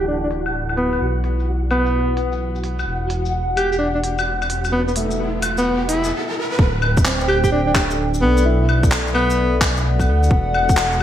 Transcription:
0.00 0.99 D1 medium
0.00 6.12 E4 medium
0.00 6.13 F#4 medium
0.00 0.05 G4 medium
0.00 6.13 A4 medium
0.00 6.13 D5 medium
0.00 6.13 F#5 medium
0.00 1.01 A5 medium
0.08 0.18 D4 medium
0.23 0.28 D4 medium
0.31 open hi-hat medium
0.46 claves medium
0.46 shaker soft
0.69 claves soft
0.69 shaker soft
0.77 1.02 B3 medium
0.77 open hi-hat medium
0.93 claves soft
0.93 shaker soft
1.01 2.85 B1 medium
1.24 open hi-hat medium
1.40 shaker soft
1.71 2.17 B3 medium
1.71 6.13 F#5 medium
1.71 open hi-hat medium
1.71 claves medium
1.71 shaker soft
1.86 shaker soft
2.17 open hi-hat medium
2.32 shaker soft
2.55 shaker soft
2.64 open hi-hat medium
2.79 claves soft
2.79 shaker soft
2.87 6.12 E1 medium
2.87 riser medium
3.10 open hi-hat medium
3.26 shaker soft
3.57 3.66 G4 medium
3.57 open hi-hat medium
3.57 claves medium
3.57 shaker soft
3.71 3.77 G4 medium
3.71 shaker soft
3.78 3.89 D4 medium
3.95 4.00 D4 medium
4.04 open hi-hat medium
4.19 claves medium
4.19 shaker soft
4.42 claves soft
4.42 shaker soft
4.50 open hi-hat medium
4.65 claves soft
4.65 shaker soft
4.72 4.82 B3 medium
4.87 4.93 B3 medium
4.87 shaker soft
4.96 6.09 A3 medium
4.96 open hi-hat medium
5.11 shaker medium
5.42 open hi-hat medium
5.42 claves medium
5.42 shaker soft
5.58 5.82 B3 medium
5.58 shaker medium
5.88 6.12 E4 medium
5.88 open hi-hat medium
6.04 shaker medium
6.59 8.23 D1 loud
6.59 kick loud
6.76 8.45 G5 medium
6.82 claves medium
6.97 11.03 A4 loud
6.97 kick loud
6.97 shaker medium
7.05 8.64 C4 medium
7.05 11.03 D5 medium
7.05 clap loud
7.21 shaker soft
7.28 7.38 G4 medium
7.28 claves medium
7.44 7.49 G4 medium
7.44 kick medium
7.44 shaker medium
7.52 7.62 D4 medium
7.67 7.72 D4 medium
7.75 8.64 D4 medium
7.75 kick loud
7.75 clap loud
7.75 claves medium
7.91 shaker medium
8.14 shaker soft
8.21 10.09 B1 medium
8.21 8.46 B3 medium
8.38 shaker medium
8.45 10.15 E4 medium
8.69 claves medium
8.83 kick loud
8.83 shaker medium
8.92 clap loud
9.07 shaker soft
9.14 9.61 B3 medium
9.14 claves medium
9.30 11.03 F#5 loud
9.30 shaker medium
9.61 kick loud
9.61 clap loud
9.61 claves medium
9.77 shaker medium
9.99 kick medium
9.99 claves soft
9.99 shaker soft
10.08 10.30 D2 loud
10.23 shaker medium
10.30 11.03 E1 loud
10.30 kick loud
10.54 claves medium
10.69 kick loud
10.69 shaker medium
10.77 clap loud
10.92 shaker soft

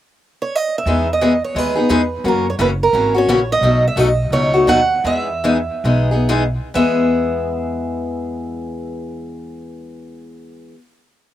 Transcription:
0.42 0.55 C#5 medium
0.55 0.77 D#5 medium
0.78 1.12 E5 medium
0.85 1.41 E2 medium
0.85 1.07 E3 medium
0.85 1.07 G#3 medium
0.85 1.07 B3 medium
0.85 1.07 D#4 medium
0.85 1.07 G#4 medium
1.13 1.44 D#5 medium
1.21 1.32 E3 medium
1.21 1.32 G#3 medium
1.21 1.32 B3 medium
1.21 1.32 D#4 medium
1.21 1.32 G#4 medium
1.44 1.58 C#5 medium
1.55 1.84 D#2 medium
1.55 1.75 E3 medium
1.55 1.75 G#3 medium
1.55 1.75 B3 medium
1.55 1.76 D#4 medium
1.55 1.74 G#4 medium
1.55 2.28 B4 medium
1.75 1.89 B3 soft
1.75 1.89 D#4 medium
1.75 1.89 G#4 soft
1.89 2.19 E2 medium
1.89 2.00 E3 medium
1.89 2.00 G#3 medium
1.89 2.01 B3 loud
1.89 2.01 D#4 medium
1.89 2.01 G#4 loud
2.24 2.52 F#2 medium
2.24 2.45 C#3 medium
2.24 2.45 E3 medium
2.24 2.45 A#3 medium
2.24 2.45 C#4 medium
2.24 2.45 F#4 medium
2.24 2.49 A#4 medium
2.50 2.54 C#5 medium
2.59 2.88 F#1 medium
2.59 2.69 C#3 medium
2.59 2.70 E3 medium
2.59 2.70 A#3 medium
2.59 2.70 C#4 medium
2.59 2.70 F#4 medium
2.59 2.66 B4 medium
2.83 3.15 A#4 medium
2.93 3.22 G#1 medium
2.93 3.13 C#3 medium
2.93 3.13 E3 medium
2.93 3.13 A#3 medium
2.93 3.13 C#4 medium
2.93 3.13 F#4 medium
3.14 3.28 A#3 soft
3.14 3.28 C#4 soft
3.14 3.27 F#4 medium
3.14 3.52 C#5 medium
3.27 3.56 A#1 medium
3.27 3.39 C#3 medium
3.27 3.39 E3 medium
3.27 3.39 A#3 medium
3.27 3.39 C#4 medium
3.27 3.39 F#4 loud
3.52 3.87 D#5 loud
3.61 3.89 B1 medium
3.61 3.83 B2 medium
3.61 3.83 F#3 medium
3.61 3.83 A3 medium
3.61 3.83 D#4 medium
3.61 3.83 F#4 medium
3.88 3.99 E5 medium
3.96 4.26 B1 medium
3.96 4.07 B2 medium
3.96 4.08 F#3 medium
3.96 4.08 A3 medium
3.96 4.08 D#4 loud
3.96 4.08 F#4 medium
3.96 4.33 D#5 loud
4.30 4.61 C#2 medium
4.30 4.52 B2 medium
4.30 4.52 F#3 medium
4.30 4.53 A3 medium
4.30 4.53 D#4 medium
4.30 4.52 F#4 medium
4.30 4.68 C#5 loud
4.54 4.67 A3 soft
4.54 4.67 D#4 soft
4.54 4.67 F#4 medium
4.67 4.98 D#2 medium
4.67 4.79 B2 medium
4.67 4.79 F#3 medium
4.67 4.79 A3 medium
4.67 4.79 D#4 medium
4.67 4.79 F#4 medium
4.67 5.06 F#5 loud
5.04 5.68 E2 medium
5.04 5.27 E3 medium
5.04 5.27 G#3 medium
5.04 5.27 B3 medium
5.04 5.28 D#4 medium
5.04 5.28 G#4 medium
5.04 6.52 E5 medium
5.44 5.56 E3 medium
5.44 5.56 G#3 medium
5.44 5.56 B3 medium
5.44 5.56 D#4 medium
5.44 5.57 G#4 loud
5.84 6.56 B1 medium
5.84 6.09 E3 medium
5.84 6.09 G#3 medium
5.84 6.09 B3 medium
5.84 6.09 D#4 medium
5.84 6.09 G#4 medium
6.11 6.28 B3 soft
6.11 6.28 D#4 soft
6.11 6.27 G#4 soft
6.29 6.42 E3 medium
6.29 6.42 G#3 medium
6.29 6.43 B3 loud
6.29 6.43 D#4 medium
6.29 6.43 G#4 medium
6.74 10.70 E2 medium
6.74 10.73 E3 medium
6.74 10.75 G#3 medium
6.74 10.75 B3 medium
6.74 10.77 G#4 medium
6.74 10.71 E5 medium

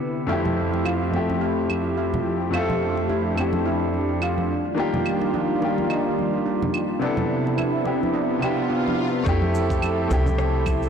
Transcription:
0.00 0.30 C3 medium
0.00 0.27 D3 medium
0.00 0.30 B3 medium
0.00 0.31 D4 medium
0.00 0.30 E4 medium
0.00 2.50 E4 medium
0.00 0.27 G4 medium
0.00 0.30 A4 loud
0.00 0.27 B4 medium
0.27 1.09 F2 medium
0.27 4.46 F3 medium
0.27 1.10 A3 medium
0.27 4.46 A3 medium
0.27 1.10 C4 medium
0.27 0.55 E4 medium
0.27 1.11 E4 medium
0.27 4.46 G4 medium
0.27 muted conga soft
0.32 1.12 G4 loud
0.45 high conga medium
0.45 low conga medium
0.74 muted conga soft
0.85 1.11 F4 medium
0.85 high conga medium
0.85 claves medium
1.11 2.49 F2 medium
1.11 2.50 A3 medium
1.11 2.51 C4 medium
1.11 2.51 E5 medium
1.11 muted conga soft
1.16 2.52 G4 medium
1.30 high conga medium
1.41 1.68 E4 medium
1.70 high conga medium
1.70 claves medium
1.97 2.23 E4 medium
2.14 muted conga soft
2.14 high conga medium
2.14 low conga medium
2.50 3.33 F2 medium
2.50 3.34 A3 medium
2.50 3.34 C4 medium
2.50 6.98 D4 medium
2.50 2.79 F4 medium
2.50 muted conga soft
2.50 claves medium
2.54 3.36 A4 loud
2.54 3.35 E5 medium
2.70 high conga medium
2.70 low conga medium
2.97 muted conga soft
3.09 3.36 E4 medium
3.09 high conga medium
3.35 4.47 F2 medium
3.35 4.48 A3 medium
3.35 4.48 C4 medium
3.35 4.49 E4 medium
3.35 muted conga medium
3.35 claves medium
3.40 4.50 G4 medium
3.53 high conga medium
3.66 3.91 E4 medium
3.94 high conga soft
4.22 4.48 F4 medium
4.22 claves medium
4.38 high conga medium
4.50 7.00 D#3 medium
4.50 7.00 G3 medium
4.50 7.00 F4 medium
4.75 5.57 D#3 medium
4.75 5.58 A#3 medium
4.75 5.59 D4 medium
4.75 5.04 D4 medium
4.75 muted conga soft
4.79 5.59 F4 medium
4.79 5.60 G4 loud
4.94 high conga medium
4.94 low conga medium
5.06 claves medium
5.21 muted conga soft
5.34 5.59 D4 medium
5.34 high conga medium
5.59 6.98 D#3 medium
5.59 6.99 A#3 medium
5.59 7.00 F4 medium
5.59 6.99 D5 medium
5.59 muted conga medium
5.65 7.01 G4 medium
5.78 high conga medium
5.90 6.16 D#4 medium
5.90 claves medium
6.19 high conga soft
6.46 6.73 D4 medium
6.62 muted conga soft
6.62 high conga medium
6.62 low conga medium
6.74 claves medium
6.99 7.82 C3 medium
6.99 9.24 C3 medium
6.99 7.83 B3 medium
6.99 9.24 B3 medium
6.99 7.83 D4 medium
6.99 7.28 D4 medium
6.99 9.24 D4 medium
6.99 9.24 E4 medium
6.99 7.84 E4 medium
6.99 muted conga soft
7.05 7.85 A4 loud
7.17 high conga medium
7.17 low conga medium
7.47 muted conga soft
7.58 7.84 E4 medium
7.58 high conga medium
7.58 claves medium
7.84 8.38 C3 medium
7.84 8.39 B3 medium
7.84 8.40 D4 medium
7.84 8.40 E4 medium
7.84 8.40 G4 medium
7.84 muted conga medium
8.03 high conga medium
8.14 8.41 D4 medium
8.14 swell medium
8.39 9.22 C3 medium
8.39 9.23 B3 medium
8.39 9.23 D4 medium
8.39 9.24 E4 medium
8.39 high conga soft
8.39 claves medium
8.44 9.25 G4 loud
8.70 8.96 D4 medium
8.88 high conga medium
9.23 10.06 F2 medium
9.23 10.06 A3 loud
9.23 10.07 C4 medium
9.23 10.89 E4 medium
9.23 10.08 E4 loud
9.23 10.89 A4 medium
9.23 10.89 G5 medium
9.23 kick loud
9.23 muted conga medium
9.23 shaker soft
9.29 10.09 G4 loud
9.42 high conga medium
9.55 shaker medium
9.70 kick medium
9.70 muted conga medium
9.70 shaker soft
9.82 high conga medium
9.82 claves medium
9.82 shaker soft
10.07 10.89 C2 loud
10.07 10.89 A3 medium
10.07 10.89 C4 medium
10.07 10.89 E4 medium
10.07 muted conga medium
10.07 low conga medium
10.07 shaker medium
10.13 10.89 G4 loud
10.26 high conga loud
10.26 low conga loud
10.26 shaker soft
10.38 cross-stick medium
10.38 shaker soft
10.66 kick loud
10.66 high conga medium
10.66 claves medium
10.66 shaker medium
10.83 shaker soft

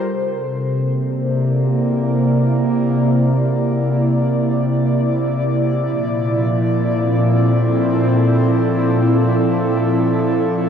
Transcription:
0.00 2.18 A4 medium
0.00 2.38 A#4 medium
0.00 2.38 C5 medium
0.11 5.81 C3 medium
0.73 8.09 A#3 medium
0.99 10.69 D5 medium
1.28 10.69 E4 medium
5.81 10.69 A#2 medium
5.89 10.69 F3 medium
6.63 10.69 C4 medium
7.14 10.69 A4 medium

